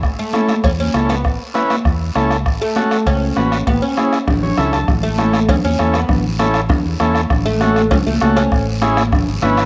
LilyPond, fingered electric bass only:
\new Staff \with { instrumentName = "Fingered electric bass" } { \clef bass \time 4/4 \key a \major \tempo 4 = 198 a,,8 r4. e,4 cis,4 | a,,8 r4. e,4 cis,4 | a,,8 r4. cis,4 a,,4 | a,,8 r4. a,,4 cis,4 |
a,,2 e,8 e,8 e,4 | a,,2 e,8 e,8 e,4 | a,,2 cis,8 cis,8 cis,4 | a,,2 gis,,8 gis,,8 gis,,4 | }